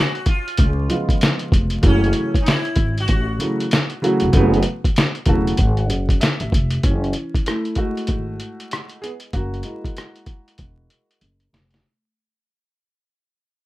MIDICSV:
0, 0, Header, 1, 5, 480
1, 0, Start_track
1, 0, Key_signature, 3, "minor"
1, 0, Tempo, 625000
1, 1409, Time_signature, 4, 2, 24, 8
1, 10489, End_track
2, 0, Start_track
2, 0, Title_t, "Sitar"
2, 0, Program_c, 0, 104
2, 0, Note_on_c, 0, 66, 80
2, 215, Note_off_c, 0, 66, 0
2, 218, Note_on_c, 0, 65, 79
2, 1143, Note_off_c, 0, 65, 0
2, 1432, Note_on_c, 0, 61, 95
2, 1831, Note_off_c, 0, 61, 0
2, 1860, Note_on_c, 0, 63, 77
2, 1895, Note_off_c, 0, 63, 0
2, 1916, Note_on_c, 0, 64, 97
2, 2268, Note_off_c, 0, 64, 0
2, 2304, Note_on_c, 0, 66, 105
2, 4751, Note_off_c, 0, 66, 0
2, 10489, End_track
3, 0, Start_track
3, 0, Title_t, "Upright piano"
3, 0, Program_c, 1, 0
3, 677, Note_on_c, 1, 49, 58
3, 684, Note_on_c, 1, 53, 59
3, 691, Note_on_c, 1, 56, 59
3, 696, Note_on_c, 1, 59, 58
3, 699, Note_on_c, 1, 65, 67
3, 1368, Note_off_c, 1, 49, 0
3, 1371, Note_off_c, 1, 53, 0
3, 1375, Note_off_c, 1, 56, 0
3, 1377, Note_off_c, 1, 59, 0
3, 1379, Note_off_c, 1, 65, 0
3, 1394, Note_on_c, 1, 49, 67
3, 1400, Note_on_c, 1, 52, 65
3, 1406, Note_on_c, 1, 54, 63
3, 1411, Note_on_c, 1, 57, 64
3, 1418, Note_on_c, 1, 64, 76
3, 1762, Note_off_c, 1, 49, 0
3, 1766, Note_off_c, 1, 52, 0
3, 1769, Note_off_c, 1, 54, 0
3, 1771, Note_off_c, 1, 57, 0
3, 1775, Note_off_c, 1, 64, 0
3, 2600, Note_on_c, 1, 49, 64
3, 2606, Note_on_c, 1, 52, 52
3, 2615, Note_on_c, 1, 54, 54
3, 2618, Note_on_c, 1, 57, 54
3, 2624, Note_on_c, 1, 64, 66
3, 2791, Note_off_c, 1, 49, 0
3, 2794, Note_off_c, 1, 52, 0
3, 2799, Note_off_c, 1, 54, 0
3, 2801, Note_off_c, 1, 57, 0
3, 2804, Note_off_c, 1, 64, 0
3, 3086, Note_on_c, 1, 49, 82
3, 3093, Note_on_c, 1, 52, 71
3, 3096, Note_on_c, 1, 54, 79
3, 3100, Note_on_c, 1, 57, 72
3, 3106, Note_on_c, 1, 66, 86
3, 3274, Note_off_c, 1, 49, 0
3, 3278, Note_off_c, 1, 52, 0
3, 3279, Note_off_c, 1, 54, 0
3, 3282, Note_off_c, 1, 57, 0
3, 3285, Note_off_c, 1, 66, 0
3, 3320, Note_on_c, 1, 49, 91
3, 3326, Note_on_c, 1, 52, 78
3, 3332, Note_on_c, 1, 54, 80
3, 3339, Note_on_c, 1, 57, 85
3, 3344, Note_on_c, 1, 59, 96
3, 3511, Note_off_c, 1, 49, 0
3, 3514, Note_off_c, 1, 52, 0
3, 3517, Note_off_c, 1, 54, 0
3, 3521, Note_off_c, 1, 57, 0
3, 3523, Note_off_c, 1, 59, 0
3, 4042, Note_on_c, 1, 49, 72
3, 4046, Note_on_c, 1, 52, 72
3, 4053, Note_on_c, 1, 81, 67
3, 4054, Note_on_c, 1, 54, 64
3, 4059, Note_on_c, 1, 57, 70
3, 4063, Note_on_c, 1, 66, 85
3, 4232, Note_off_c, 1, 49, 0
3, 4235, Note_off_c, 1, 52, 0
3, 4238, Note_off_c, 1, 54, 0
3, 4241, Note_off_c, 1, 57, 0
3, 4243, Note_off_c, 1, 66, 0
3, 4274, Note_off_c, 1, 81, 0
3, 4290, Note_on_c, 1, 78, 72
3, 4430, Note_off_c, 1, 78, 0
3, 4444, Note_on_c, 1, 78, 71
3, 4748, Note_off_c, 1, 78, 0
3, 4767, Note_on_c, 1, 76, 75
3, 4908, Note_off_c, 1, 76, 0
3, 4922, Note_on_c, 1, 76, 67
3, 5227, Note_off_c, 1, 76, 0
3, 5253, Note_on_c, 1, 61, 76
3, 5256, Note_on_c, 1, 52, 54
3, 5702, Note_off_c, 1, 52, 0
3, 5734, Note_on_c, 1, 64, 83
3, 5742, Note_on_c, 1, 57, 66
3, 5745, Note_off_c, 1, 61, 0
3, 5955, Note_off_c, 1, 64, 0
3, 5959, Note_off_c, 1, 57, 0
3, 5972, Note_on_c, 1, 56, 47
3, 5973, Note_on_c, 1, 66, 84
3, 5979, Note_on_c, 1, 57, 69
3, 5981, Note_on_c, 1, 64, 58
3, 6900, Note_off_c, 1, 66, 0
3, 6905, Note_off_c, 1, 57, 0
3, 6925, Note_on_c, 1, 68, 90
3, 6941, Note_on_c, 1, 59, 66
3, 6980, Note_off_c, 1, 68, 0
3, 6993, Note_off_c, 1, 59, 0
3, 7140, Note_off_c, 1, 56, 0
3, 7145, Note_off_c, 1, 64, 0
3, 7172, Note_on_c, 1, 66, 86
3, 7186, Note_on_c, 1, 58, 63
3, 7396, Note_off_c, 1, 58, 0
3, 7406, Note_on_c, 1, 56, 56
3, 7408, Note_on_c, 1, 58, 49
3, 7411, Note_on_c, 1, 64, 57
3, 8580, Note_off_c, 1, 66, 0
3, 9057, Note_off_c, 1, 56, 0
3, 9058, Note_off_c, 1, 58, 0
3, 9060, Note_off_c, 1, 64, 0
3, 10489, End_track
4, 0, Start_track
4, 0, Title_t, "Upright bass"
4, 0, Program_c, 2, 32
4, 453, Note_on_c, 2, 37, 108
4, 666, Note_off_c, 2, 37, 0
4, 1168, Note_on_c, 2, 29, 82
4, 1383, Note_off_c, 2, 29, 0
4, 1409, Note_on_c, 2, 30, 99
4, 1624, Note_off_c, 2, 30, 0
4, 2123, Note_on_c, 2, 32, 86
4, 2340, Note_off_c, 2, 32, 0
4, 2373, Note_on_c, 2, 33, 103
4, 2586, Note_off_c, 2, 33, 0
4, 3242, Note_on_c, 2, 29, 90
4, 3321, Note_off_c, 2, 29, 0
4, 3332, Note_on_c, 2, 30, 99
4, 3545, Note_off_c, 2, 30, 0
4, 4043, Note_on_c, 2, 28, 82
4, 4260, Note_off_c, 2, 28, 0
4, 4292, Note_on_c, 2, 32, 102
4, 4529, Note_off_c, 2, 32, 0
4, 4529, Note_on_c, 2, 30, 74
4, 4743, Note_off_c, 2, 30, 0
4, 4920, Note_on_c, 2, 33, 79
4, 4999, Note_off_c, 2, 33, 0
4, 5013, Note_on_c, 2, 29, 86
4, 5226, Note_off_c, 2, 29, 0
4, 5253, Note_on_c, 2, 30, 92
4, 5466, Note_off_c, 2, 30, 0
4, 6211, Note_on_c, 2, 32, 88
4, 6425, Note_off_c, 2, 32, 0
4, 7171, Note_on_c, 2, 30, 107
4, 7385, Note_off_c, 2, 30, 0
4, 8132, Note_on_c, 2, 28, 86
4, 8345, Note_off_c, 2, 28, 0
4, 8614, Note_on_c, 2, 30, 83
4, 8826, Note_off_c, 2, 30, 0
4, 8856, Note_on_c, 2, 29, 80
4, 9067, Note_off_c, 2, 29, 0
4, 10489, End_track
5, 0, Start_track
5, 0, Title_t, "Drums"
5, 116, Note_on_c, 9, 42, 32
5, 193, Note_off_c, 9, 42, 0
5, 199, Note_on_c, 9, 42, 70
5, 202, Note_on_c, 9, 36, 83
5, 276, Note_off_c, 9, 42, 0
5, 279, Note_off_c, 9, 36, 0
5, 367, Note_on_c, 9, 42, 47
5, 441, Note_off_c, 9, 42, 0
5, 441, Note_on_c, 9, 42, 99
5, 450, Note_on_c, 9, 36, 103
5, 518, Note_off_c, 9, 42, 0
5, 527, Note_off_c, 9, 36, 0
5, 689, Note_on_c, 9, 42, 73
5, 766, Note_off_c, 9, 42, 0
5, 835, Note_on_c, 9, 36, 84
5, 844, Note_on_c, 9, 42, 53
5, 912, Note_off_c, 9, 36, 0
5, 921, Note_off_c, 9, 42, 0
5, 930, Note_on_c, 9, 42, 104
5, 944, Note_on_c, 9, 38, 119
5, 1007, Note_off_c, 9, 42, 0
5, 1021, Note_off_c, 9, 38, 0
5, 1070, Note_on_c, 9, 42, 37
5, 1147, Note_off_c, 9, 42, 0
5, 1167, Note_on_c, 9, 36, 111
5, 1179, Note_on_c, 9, 42, 72
5, 1244, Note_off_c, 9, 36, 0
5, 1256, Note_off_c, 9, 42, 0
5, 1306, Note_on_c, 9, 42, 54
5, 1383, Note_off_c, 9, 42, 0
5, 1404, Note_on_c, 9, 42, 82
5, 1408, Note_on_c, 9, 36, 118
5, 1481, Note_off_c, 9, 42, 0
5, 1484, Note_off_c, 9, 36, 0
5, 1566, Note_on_c, 9, 42, 34
5, 1635, Note_off_c, 9, 42, 0
5, 1635, Note_on_c, 9, 42, 72
5, 1712, Note_off_c, 9, 42, 0
5, 1801, Note_on_c, 9, 36, 85
5, 1808, Note_on_c, 9, 42, 50
5, 1878, Note_off_c, 9, 36, 0
5, 1885, Note_off_c, 9, 42, 0
5, 1893, Note_on_c, 9, 42, 90
5, 1905, Note_on_c, 9, 38, 101
5, 1969, Note_off_c, 9, 42, 0
5, 1982, Note_off_c, 9, 38, 0
5, 2036, Note_on_c, 9, 42, 34
5, 2112, Note_off_c, 9, 42, 0
5, 2116, Note_on_c, 9, 42, 70
5, 2122, Note_on_c, 9, 36, 83
5, 2193, Note_off_c, 9, 42, 0
5, 2199, Note_off_c, 9, 36, 0
5, 2285, Note_on_c, 9, 42, 46
5, 2362, Note_off_c, 9, 42, 0
5, 2363, Note_on_c, 9, 42, 95
5, 2371, Note_on_c, 9, 36, 96
5, 2440, Note_off_c, 9, 42, 0
5, 2447, Note_off_c, 9, 36, 0
5, 2611, Note_on_c, 9, 42, 79
5, 2688, Note_off_c, 9, 42, 0
5, 2768, Note_on_c, 9, 42, 56
5, 2845, Note_off_c, 9, 42, 0
5, 2851, Note_on_c, 9, 42, 106
5, 2865, Note_on_c, 9, 38, 111
5, 2928, Note_off_c, 9, 42, 0
5, 2942, Note_off_c, 9, 38, 0
5, 2993, Note_on_c, 9, 42, 37
5, 3070, Note_off_c, 9, 42, 0
5, 3103, Note_on_c, 9, 42, 71
5, 3180, Note_off_c, 9, 42, 0
5, 3224, Note_on_c, 9, 42, 55
5, 3301, Note_off_c, 9, 42, 0
5, 3326, Note_on_c, 9, 42, 80
5, 3329, Note_on_c, 9, 36, 115
5, 3403, Note_off_c, 9, 42, 0
5, 3405, Note_off_c, 9, 36, 0
5, 3484, Note_on_c, 9, 42, 31
5, 3552, Note_off_c, 9, 42, 0
5, 3552, Note_on_c, 9, 42, 75
5, 3629, Note_off_c, 9, 42, 0
5, 3720, Note_on_c, 9, 36, 85
5, 3725, Note_on_c, 9, 42, 57
5, 3797, Note_off_c, 9, 36, 0
5, 3802, Note_off_c, 9, 42, 0
5, 3811, Note_on_c, 9, 42, 89
5, 3824, Note_on_c, 9, 38, 113
5, 3888, Note_off_c, 9, 42, 0
5, 3901, Note_off_c, 9, 38, 0
5, 3955, Note_on_c, 9, 42, 36
5, 4032, Note_off_c, 9, 42, 0
5, 4036, Note_on_c, 9, 42, 66
5, 4042, Note_on_c, 9, 36, 80
5, 4113, Note_off_c, 9, 42, 0
5, 4119, Note_off_c, 9, 36, 0
5, 4204, Note_on_c, 9, 42, 50
5, 4281, Note_off_c, 9, 42, 0
5, 4281, Note_on_c, 9, 42, 97
5, 4290, Note_on_c, 9, 36, 96
5, 4358, Note_off_c, 9, 42, 0
5, 4367, Note_off_c, 9, 36, 0
5, 4433, Note_on_c, 9, 42, 33
5, 4510, Note_off_c, 9, 42, 0
5, 4530, Note_on_c, 9, 42, 80
5, 4607, Note_off_c, 9, 42, 0
5, 4676, Note_on_c, 9, 36, 84
5, 4685, Note_on_c, 9, 42, 52
5, 4752, Note_off_c, 9, 36, 0
5, 4762, Note_off_c, 9, 42, 0
5, 4771, Note_on_c, 9, 42, 100
5, 4784, Note_on_c, 9, 38, 105
5, 4848, Note_off_c, 9, 42, 0
5, 4861, Note_off_c, 9, 38, 0
5, 4915, Note_on_c, 9, 42, 39
5, 4991, Note_off_c, 9, 42, 0
5, 5010, Note_on_c, 9, 36, 102
5, 5024, Note_on_c, 9, 42, 72
5, 5086, Note_off_c, 9, 36, 0
5, 5101, Note_off_c, 9, 42, 0
5, 5149, Note_on_c, 9, 42, 56
5, 5226, Note_off_c, 9, 42, 0
5, 5248, Note_on_c, 9, 42, 81
5, 5250, Note_on_c, 9, 36, 106
5, 5325, Note_off_c, 9, 42, 0
5, 5327, Note_off_c, 9, 36, 0
5, 5406, Note_on_c, 9, 42, 29
5, 5477, Note_off_c, 9, 42, 0
5, 5477, Note_on_c, 9, 42, 66
5, 5554, Note_off_c, 9, 42, 0
5, 5641, Note_on_c, 9, 36, 82
5, 5648, Note_on_c, 9, 42, 52
5, 5718, Note_off_c, 9, 36, 0
5, 5725, Note_off_c, 9, 42, 0
5, 5732, Note_on_c, 9, 42, 80
5, 5744, Note_on_c, 9, 37, 96
5, 5809, Note_off_c, 9, 42, 0
5, 5821, Note_off_c, 9, 37, 0
5, 5877, Note_on_c, 9, 42, 34
5, 5953, Note_off_c, 9, 42, 0
5, 5956, Note_on_c, 9, 42, 65
5, 5962, Note_on_c, 9, 36, 72
5, 6032, Note_off_c, 9, 42, 0
5, 6039, Note_off_c, 9, 36, 0
5, 6123, Note_on_c, 9, 42, 44
5, 6198, Note_off_c, 9, 42, 0
5, 6198, Note_on_c, 9, 42, 91
5, 6209, Note_on_c, 9, 36, 91
5, 6275, Note_off_c, 9, 42, 0
5, 6286, Note_off_c, 9, 36, 0
5, 6449, Note_on_c, 9, 42, 72
5, 6525, Note_off_c, 9, 42, 0
5, 6604, Note_on_c, 9, 42, 51
5, 6681, Note_off_c, 9, 42, 0
5, 6692, Note_on_c, 9, 42, 95
5, 6705, Note_on_c, 9, 37, 110
5, 6768, Note_off_c, 9, 42, 0
5, 6782, Note_off_c, 9, 37, 0
5, 6831, Note_on_c, 9, 42, 34
5, 6908, Note_off_c, 9, 42, 0
5, 6940, Note_on_c, 9, 42, 69
5, 7017, Note_off_c, 9, 42, 0
5, 7065, Note_on_c, 9, 42, 52
5, 7142, Note_off_c, 9, 42, 0
5, 7168, Note_on_c, 9, 42, 74
5, 7169, Note_on_c, 9, 36, 100
5, 7244, Note_off_c, 9, 42, 0
5, 7245, Note_off_c, 9, 36, 0
5, 7326, Note_on_c, 9, 42, 31
5, 7396, Note_off_c, 9, 42, 0
5, 7396, Note_on_c, 9, 42, 66
5, 7473, Note_off_c, 9, 42, 0
5, 7561, Note_on_c, 9, 36, 81
5, 7568, Note_on_c, 9, 42, 49
5, 7638, Note_off_c, 9, 36, 0
5, 7645, Note_off_c, 9, 42, 0
5, 7654, Note_on_c, 9, 42, 79
5, 7666, Note_on_c, 9, 37, 98
5, 7731, Note_off_c, 9, 42, 0
5, 7743, Note_off_c, 9, 37, 0
5, 7799, Note_on_c, 9, 42, 30
5, 7876, Note_off_c, 9, 42, 0
5, 7882, Note_on_c, 9, 42, 62
5, 7884, Note_on_c, 9, 36, 80
5, 7959, Note_off_c, 9, 42, 0
5, 7961, Note_off_c, 9, 36, 0
5, 8047, Note_on_c, 9, 42, 43
5, 8124, Note_off_c, 9, 42, 0
5, 8124, Note_on_c, 9, 42, 88
5, 8132, Note_on_c, 9, 36, 87
5, 8201, Note_off_c, 9, 42, 0
5, 8208, Note_off_c, 9, 36, 0
5, 8373, Note_on_c, 9, 42, 70
5, 8450, Note_off_c, 9, 42, 0
5, 8531, Note_on_c, 9, 42, 49
5, 8608, Note_off_c, 9, 42, 0
5, 8612, Note_on_c, 9, 42, 89
5, 8689, Note_off_c, 9, 42, 0
5, 8756, Note_on_c, 9, 42, 31
5, 8832, Note_off_c, 9, 42, 0
5, 8862, Note_on_c, 9, 38, 85
5, 8862, Note_on_c, 9, 42, 63
5, 8939, Note_off_c, 9, 38, 0
5, 8939, Note_off_c, 9, 42, 0
5, 8990, Note_on_c, 9, 42, 48
5, 9016, Note_on_c, 9, 38, 70
5, 9066, Note_off_c, 9, 42, 0
5, 9093, Note_off_c, 9, 38, 0
5, 10489, End_track
0, 0, End_of_file